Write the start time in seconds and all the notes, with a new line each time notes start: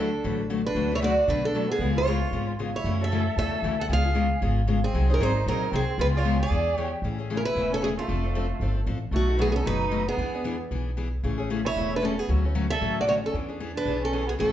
Already playing: D2 D4 A4
0.24 A1 D3 F#3 A3 D4 F#4 B4
0.50 D3 F#3 A3 D4 F#4 B4
0.66 D4 B4
0.75 D2 D3 F#3 A3 D4 F#4 B4
0.91 A3 D4 E4 F#4 B4
0.95 C#5
1.02 D3 F#3 A3 D4 F#4 B4 D5
1.28 B2 D3 F#3 A3 D4 F#4 B4
1.45 D4 A4
1.55 D3 F#3 A3 D4 F#4 B4
1.70 B3 G#4
1.79 C#2 C#3 G#3 B3 F4 G#4
1.96 B3 F4 G#4 C#5
2.07 C#3 G#3 B3 F4 G#4
2.31 G#1 C#3 G#3 B3 F4 G#4
2.59 C#3 G#3 B3 F4 G#4
2.74 E4 C#5
2.84 F#2 C#3 E3 A3 C#4 F#4
3.01 A3 C#4 F#4 A4 E5
3.12 C#3 E3 A3 C#4 F#4
3.36 E2 C#3 E3 A3 C#4 F#4 A4 E5
3.62 D2 C#3 E3 A3 C#4 F#4
3.79 A4 F#5
3.89 C#2 C#3 G#3 B3 F4 G#4
3.93 F5
4.04 B3 F4 G#4
4.15 C#3 G#3 B3 F4 G#4
4.41 G#1 C#3 G#3 B3 F4 G#4
4.67 C#3 G#3 B3 F4 G#4
4.84 C4 G#4
4.93 C2 C3 F#3 C4 D#4 G#4 C5
5.10 C4 C#4 D#4 G#4 C5
5.14 A#4
5.19 G#1 C3 F#3 C4 D#4 G#4 C5
5.23 C5
5.46 A#1 C3 F#3 C4 D#4 G#4 A#4 C5
5.72 C2 C3 F#3 C4 D#4 G#4 C5
5.98 C#2 C#3 G#3 B3 F4 G#4 B4
6.14 B3 F4 G#4 C#5
6.25 C#3 G#3 B3 F4 G#4
6.39 G#4 D5
6.50 E2 E3 B3 D4 G#4
6.75 E3 B3 D4 G4 G#4 C#5
7.02 A1 C#3 E3 A3 C#4 G#4
7.18 A3 C#4 G#4
7.30 C#3 E3 A3 C#4 G#4
7.35 C#4 A#4
7.44 E4 B4
7.55 E1 C#3 E3 A3 C#4 G#4
7.72 C#4 A4
7.81 C#3 E3 A3 C#4 G#4
7.97 A3 F4
8.08 F1 F3 C4 D4 A4
8.23 C4 D4 A4
8.35 F3 C4 D4 A4
8.60 G1 F3 C4 D4 A4
8.86 A1 F3 C4 D4 A4
9.11 B1 B2 F#3 A3 D#4 F#4
9.16 F#4
9.28 A3 D#4 F#4
9.38 B2 F#3 A3 B3 D#4 F#4 G#4
9.49 B3 C#4 G#4
9.56 A4
9.64 F#1 B2 F#3 A3 D#4 F#4 B4
9.91 B2 F#3 A3 D#4 F#4
10.07 B3 G#4
10.17 E2 E3 B3 D4 G#4
10.34 B3 D4 G#4
10.44 E3 B3 D4 G#4
10.71 B1 E3 B3 D4 G#4
10.97 E3 B3 D4 G#4
11.23 A1 C#3 E3 A3 C#4 G#4
11.38 A3 C#4 G#4
11.50 C#3 E3 A3 C#4 G#4
11.65 E4 C#5
11.76 E1 C#3 E3 A3 C#4 G#4
11.96 D4 B4
12.02 C#3 E3 A3 C#4 G#4 A4
12.19 B3 G#4
12.28 D2 D3 F#3 A3 C#4 F#4
12.44 A3 C#4 F#4
12.55 D3 F#3 A3 C#4 F#4
12.70 A4 E5
12.81 A1 D3 F#3 A3 C#4 F#4
13.00 F#4 D5
13.07 D3 F#3 A3 C#4 F#4 C#5
13.23 C#4 A4
13.33 E2 E3 B3 D4 G#4
13.48 B3 D4 G#4
13.60 E3 B3 D4 G#4
13.74 D4 B4
13.86 B1 E3 B3 D4 G#4
14.02 C#4 A4
14.13 E3 B3 D4 G#4
14.27 B3 G#4
14.38 A1 C#3 E3 A3 C#4 F#4 A4